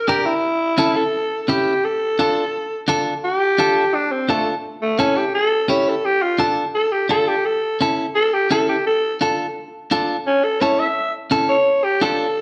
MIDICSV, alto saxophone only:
0, 0, Header, 1, 2, 480
1, 0, Start_track
1, 0, Key_signature, -1, "minor"
1, 0, Tempo, 351083
1, 593, Time_signature, 4, 2, 24, 8
1, 16972, End_track
2, 0, Start_track
2, 0, Title_t, "Alto saxophone"
2, 0, Program_c, 0, 65
2, 106, Note_on_c, 0, 67, 90
2, 349, Note_on_c, 0, 64, 101
2, 369, Note_off_c, 0, 67, 0
2, 1310, Note_on_c, 0, 69, 96
2, 1330, Note_off_c, 0, 64, 0
2, 1938, Note_off_c, 0, 69, 0
2, 1938, Note_on_c, 0, 69, 65
2, 2040, Note_on_c, 0, 67, 86
2, 2061, Note_off_c, 0, 69, 0
2, 2525, Note_on_c, 0, 69, 97
2, 2546, Note_off_c, 0, 67, 0
2, 3958, Note_off_c, 0, 69, 0
2, 4430, Note_on_c, 0, 67, 112
2, 5391, Note_on_c, 0, 62, 97
2, 5412, Note_off_c, 0, 67, 0
2, 5627, Note_on_c, 0, 60, 81
2, 5647, Note_off_c, 0, 62, 0
2, 5873, Note_on_c, 0, 57, 87
2, 5894, Note_off_c, 0, 60, 0
2, 6106, Note_off_c, 0, 57, 0
2, 6588, Note_on_c, 0, 57, 94
2, 6823, Note_on_c, 0, 61, 86
2, 6844, Note_off_c, 0, 57, 0
2, 7071, Note_on_c, 0, 67, 78
2, 7092, Note_off_c, 0, 61, 0
2, 7299, Note_off_c, 0, 67, 0
2, 7307, Note_on_c, 0, 69, 106
2, 7776, Note_off_c, 0, 69, 0
2, 7790, Note_on_c, 0, 73, 77
2, 8048, Note_on_c, 0, 69, 86
2, 8068, Note_off_c, 0, 73, 0
2, 8275, Note_on_c, 0, 67, 97
2, 8295, Note_off_c, 0, 69, 0
2, 8505, Note_on_c, 0, 65, 92
2, 8525, Note_off_c, 0, 67, 0
2, 8742, Note_off_c, 0, 65, 0
2, 9224, Note_on_c, 0, 69, 103
2, 9461, Note_on_c, 0, 67, 86
2, 9481, Note_off_c, 0, 69, 0
2, 9700, Note_off_c, 0, 67, 0
2, 9709, Note_on_c, 0, 69, 95
2, 9952, Note_on_c, 0, 67, 88
2, 9972, Note_off_c, 0, 69, 0
2, 10192, Note_on_c, 0, 69, 105
2, 10212, Note_off_c, 0, 67, 0
2, 10659, Note_off_c, 0, 69, 0
2, 11144, Note_on_c, 0, 69, 105
2, 11396, Note_on_c, 0, 67, 92
2, 11416, Note_off_c, 0, 69, 0
2, 11628, Note_off_c, 0, 67, 0
2, 11635, Note_on_c, 0, 69, 88
2, 11868, Note_off_c, 0, 69, 0
2, 11879, Note_on_c, 0, 67, 80
2, 12110, Note_off_c, 0, 67, 0
2, 12119, Note_on_c, 0, 69, 105
2, 12582, Note_off_c, 0, 69, 0
2, 14037, Note_on_c, 0, 61, 101
2, 14272, Note_on_c, 0, 69, 92
2, 14292, Note_off_c, 0, 61, 0
2, 14510, Note_on_c, 0, 73, 88
2, 14530, Note_off_c, 0, 69, 0
2, 14759, Note_on_c, 0, 76, 100
2, 14779, Note_off_c, 0, 73, 0
2, 15221, Note_off_c, 0, 76, 0
2, 15709, Note_on_c, 0, 73, 92
2, 16186, Note_on_c, 0, 67, 94
2, 16206, Note_off_c, 0, 73, 0
2, 16429, Note_on_c, 0, 69, 92
2, 16450, Note_off_c, 0, 67, 0
2, 16972, Note_off_c, 0, 69, 0
2, 16972, End_track
0, 0, End_of_file